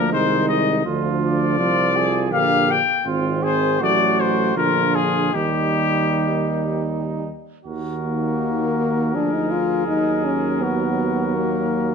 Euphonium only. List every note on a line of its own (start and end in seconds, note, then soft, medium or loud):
0.00 0.15 F3 medium
0.13 0.85 D#3 medium
0.86 1.60 D3 medium
1.58 2.34 F3 medium
2.32 2.80 D3 medium
3.06 3.77 D#3 medium
3.82 4.55 F#3 medium
4.56 5.32 D3 medium
5.34 7.30 D#3 medium
7.66 9.16 D#3 soft
9.14 9.88 F3 soft
9.89 11.95 F#3 soft